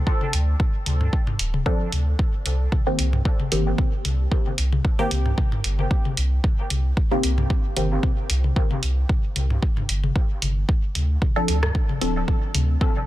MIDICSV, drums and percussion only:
0, 0, Header, 1, 2, 480
1, 0, Start_track
1, 0, Tempo, 530973
1, 61, Time_signature, 4, 2, 24, 8
1, 11811, End_track
2, 0, Start_track
2, 0, Title_t, "Drums"
2, 60, Note_on_c, 9, 36, 112
2, 151, Note_off_c, 9, 36, 0
2, 191, Note_on_c, 9, 48, 70
2, 281, Note_off_c, 9, 48, 0
2, 300, Note_on_c, 9, 42, 80
2, 391, Note_off_c, 9, 42, 0
2, 540, Note_on_c, 9, 48, 39
2, 541, Note_on_c, 9, 36, 102
2, 630, Note_off_c, 9, 48, 0
2, 631, Note_off_c, 9, 36, 0
2, 780, Note_on_c, 9, 42, 79
2, 780, Note_on_c, 9, 48, 76
2, 871, Note_off_c, 9, 42, 0
2, 871, Note_off_c, 9, 48, 0
2, 911, Note_on_c, 9, 45, 77
2, 1001, Note_off_c, 9, 45, 0
2, 1021, Note_on_c, 9, 36, 109
2, 1111, Note_off_c, 9, 36, 0
2, 1150, Note_on_c, 9, 45, 85
2, 1150, Note_on_c, 9, 48, 42
2, 1240, Note_off_c, 9, 45, 0
2, 1240, Note_off_c, 9, 48, 0
2, 1260, Note_on_c, 9, 42, 81
2, 1350, Note_off_c, 9, 42, 0
2, 1390, Note_on_c, 9, 48, 69
2, 1481, Note_off_c, 9, 48, 0
2, 1500, Note_on_c, 9, 36, 95
2, 1591, Note_off_c, 9, 36, 0
2, 1740, Note_on_c, 9, 42, 81
2, 1740, Note_on_c, 9, 48, 43
2, 1830, Note_off_c, 9, 42, 0
2, 1830, Note_off_c, 9, 48, 0
2, 1980, Note_on_c, 9, 36, 115
2, 2071, Note_off_c, 9, 36, 0
2, 2220, Note_on_c, 9, 42, 85
2, 2220, Note_on_c, 9, 48, 42
2, 2311, Note_off_c, 9, 42, 0
2, 2311, Note_off_c, 9, 48, 0
2, 2461, Note_on_c, 9, 36, 107
2, 2461, Note_on_c, 9, 48, 74
2, 2551, Note_off_c, 9, 36, 0
2, 2551, Note_off_c, 9, 48, 0
2, 2700, Note_on_c, 9, 42, 79
2, 2791, Note_off_c, 9, 42, 0
2, 2831, Note_on_c, 9, 45, 80
2, 2831, Note_on_c, 9, 48, 43
2, 2921, Note_off_c, 9, 45, 0
2, 2921, Note_off_c, 9, 48, 0
2, 2940, Note_on_c, 9, 36, 117
2, 3031, Note_off_c, 9, 36, 0
2, 3070, Note_on_c, 9, 48, 77
2, 3160, Note_off_c, 9, 48, 0
2, 3180, Note_on_c, 9, 42, 82
2, 3270, Note_off_c, 9, 42, 0
2, 3420, Note_on_c, 9, 36, 102
2, 3420, Note_on_c, 9, 48, 43
2, 3510, Note_off_c, 9, 48, 0
2, 3511, Note_off_c, 9, 36, 0
2, 3660, Note_on_c, 9, 42, 83
2, 3660, Note_on_c, 9, 48, 82
2, 3751, Note_off_c, 9, 42, 0
2, 3751, Note_off_c, 9, 48, 0
2, 3901, Note_on_c, 9, 36, 118
2, 3991, Note_off_c, 9, 36, 0
2, 4031, Note_on_c, 9, 48, 46
2, 4122, Note_off_c, 9, 48, 0
2, 4141, Note_on_c, 9, 42, 82
2, 4231, Note_off_c, 9, 42, 0
2, 4272, Note_on_c, 9, 48, 84
2, 4362, Note_off_c, 9, 48, 0
2, 4381, Note_on_c, 9, 36, 108
2, 4471, Note_off_c, 9, 36, 0
2, 4621, Note_on_c, 9, 42, 81
2, 4621, Note_on_c, 9, 48, 48
2, 4711, Note_off_c, 9, 42, 0
2, 4712, Note_off_c, 9, 48, 0
2, 4752, Note_on_c, 9, 45, 79
2, 4842, Note_off_c, 9, 45, 0
2, 4861, Note_on_c, 9, 36, 118
2, 4862, Note_on_c, 9, 48, 82
2, 4951, Note_off_c, 9, 36, 0
2, 4952, Note_off_c, 9, 48, 0
2, 4992, Note_on_c, 9, 45, 88
2, 5082, Note_off_c, 9, 45, 0
2, 5101, Note_on_c, 9, 42, 83
2, 5191, Note_off_c, 9, 42, 0
2, 5232, Note_on_c, 9, 48, 46
2, 5323, Note_off_c, 9, 48, 0
2, 5341, Note_on_c, 9, 36, 106
2, 5431, Note_off_c, 9, 36, 0
2, 5472, Note_on_c, 9, 48, 80
2, 5562, Note_off_c, 9, 48, 0
2, 5580, Note_on_c, 9, 42, 87
2, 5671, Note_off_c, 9, 42, 0
2, 5821, Note_on_c, 9, 36, 117
2, 5822, Note_on_c, 9, 48, 46
2, 5911, Note_off_c, 9, 36, 0
2, 5912, Note_off_c, 9, 48, 0
2, 6060, Note_on_c, 9, 42, 90
2, 6062, Note_on_c, 9, 48, 79
2, 6150, Note_off_c, 9, 42, 0
2, 6152, Note_off_c, 9, 48, 0
2, 6301, Note_on_c, 9, 36, 112
2, 6391, Note_off_c, 9, 36, 0
2, 6431, Note_on_c, 9, 48, 45
2, 6521, Note_off_c, 9, 48, 0
2, 6540, Note_on_c, 9, 42, 87
2, 6630, Note_off_c, 9, 42, 0
2, 6670, Note_on_c, 9, 45, 77
2, 6670, Note_on_c, 9, 48, 81
2, 6761, Note_off_c, 9, 45, 0
2, 6761, Note_off_c, 9, 48, 0
2, 6781, Note_on_c, 9, 36, 115
2, 6871, Note_off_c, 9, 36, 0
2, 7020, Note_on_c, 9, 42, 87
2, 7021, Note_on_c, 9, 48, 44
2, 7110, Note_off_c, 9, 42, 0
2, 7111, Note_off_c, 9, 48, 0
2, 7260, Note_on_c, 9, 48, 83
2, 7261, Note_on_c, 9, 36, 105
2, 7350, Note_off_c, 9, 48, 0
2, 7351, Note_off_c, 9, 36, 0
2, 7500, Note_on_c, 9, 42, 84
2, 7590, Note_off_c, 9, 42, 0
2, 7631, Note_on_c, 9, 48, 47
2, 7721, Note_off_c, 9, 48, 0
2, 7741, Note_on_c, 9, 36, 117
2, 7831, Note_off_c, 9, 36, 0
2, 7871, Note_on_c, 9, 48, 80
2, 7962, Note_off_c, 9, 48, 0
2, 7980, Note_on_c, 9, 42, 89
2, 8070, Note_off_c, 9, 42, 0
2, 8220, Note_on_c, 9, 48, 44
2, 8221, Note_on_c, 9, 36, 110
2, 8311, Note_off_c, 9, 36, 0
2, 8311, Note_off_c, 9, 48, 0
2, 8461, Note_on_c, 9, 42, 87
2, 8461, Note_on_c, 9, 48, 81
2, 8551, Note_off_c, 9, 42, 0
2, 8551, Note_off_c, 9, 48, 0
2, 8592, Note_on_c, 9, 45, 75
2, 8682, Note_off_c, 9, 45, 0
2, 8701, Note_on_c, 9, 36, 119
2, 8791, Note_off_c, 9, 36, 0
2, 8832, Note_on_c, 9, 45, 81
2, 8832, Note_on_c, 9, 48, 45
2, 8922, Note_off_c, 9, 45, 0
2, 8922, Note_off_c, 9, 48, 0
2, 8940, Note_on_c, 9, 42, 87
2, 9031, Note_off_c, 9, 42, 0
2, 9072, Note_on_c, 9, 48, 76
2, 9162, Note_off_c, 9, 48, 0
2, 9181, Note_on_c, 9, 36, 102
2, 9271, Note_off_c, 9, 36, 0
2, 9421, Note_on_c, 9, 42, 83
2, 9421, Note_on_c, 9, 48, 46
2, 9511, Note_off_c, 9, 48, 0
2, 9512, Note_off_c, 9, 42, 0
2, 9661, Note_on_c, 9, 36, 120
2, 9751, Note_off_c, 9, 36, 0
2, 9901, Note_on_c, 9, 42, 81
2, 9901, Note_on_c, 9, 48, 43
2, 9991, Note_off_c, 9, 42, 0
2, 9992, Note_off_c, 9, 48, 0
2, 10141, Note_on_c, 9, 36, 104
2, 10141, Note_on_c, 9, 48, 76
2, 10231, Note_off_c, 9, 36, 0
2, 10231, Note_off_c, 9, 48, 0
2, 10380, Note_on_c, 9, 42, 82
2, 10471, Note_off_c, 9, 42, 0
2, 10511, Note_on_c, 9, 45, 73
2, 10511, Note_on_c, 9, 48, 43
2, 10512, Note_on_c, 9, 37, 75
2, 10602, Note_off_c, 9, 37, 0
2, 10602, Note_off_c, 9, 45, 0
2, 10602, Note_off_c, 9, 48, 0
2, 10621, Note_on_c, 9, 36, 116
2, 10711, Note_off_c, 9, 36, 0
2, 10751, Note_on_c, 9, 48, 78
2, 10841, Note_off_c, 9, 48, 0
2, 10861, Note_on_c, 9, 42, 82
2, 10952, Note_off_c, 9, 42, 0
2, 11101, Note_on_c, 9, 36, 94
2, 11102, Note_on_c, 9, 48, 47
2, 11192, Note_off_c, 9, 36, 0
2, 11192, Note_off_c, 9, 48, 0
2, 11340, Note_on_c, 9, 48, 82
2, 11341, Note_on_c, 9, 42, 84
2, 11431, Note_off_c, 9, 42, 0
2, 11431, Note_off_c, 9, 48, 0
2, 11581, Note_on_c, 9, 36, 111
2, 11671, Note_off_c, 9, 36, 0
2, 11712, Note_on_c, 9, 48, 42
2, 11802, Note_off_c, 9, 48, 0
2, 11811, End_track
0, 0, End_of_file